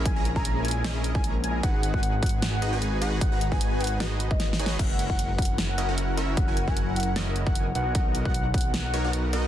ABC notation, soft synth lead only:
X:1
M:4/4
L:1/16
Q:"Swing 16ths" 1/4=152
K:G#m
V:1 name="Soft synth lead"
g2 z a2 z g2 z3 g2 z g2 | f2 z f2 z f2 z f2 z4 z | f2 z g3 f2 z3 d2 z c2 | f2 z f2 z f2 z f2 z4 z |
f3 g2 z f2 z3 f2 z f2 | f2 z f2 z f2 z f2 z4 z |]